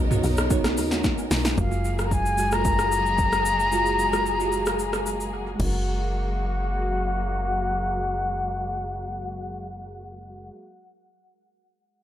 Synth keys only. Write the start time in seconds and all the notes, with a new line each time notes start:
Already playing: B3 D#4 F#4 A#4 C#5 D#5
0.10 B3 D#4 F#4 A#4 C#5
0.50 B3 D#4 F#4 A#4 C#5
0.92 F#5
1.19 G#5
1.31 A#5
1.45 F#5
1.57 G#3 F4 F#4 A#4
2.37 G#3 F4 F#4 G#4
2.51 G#3 F4 F#4 A4
2.60 A#4
3.71 G#3 F4 F#4 G#4
4.12 G#3 F4 F#4 G#4
4.39 G#3 F4 F#4 G4
4.48 G#4
5.07 A#5
5.34 F#5
5.55 G#3 G#4
5.62 F#4 A#4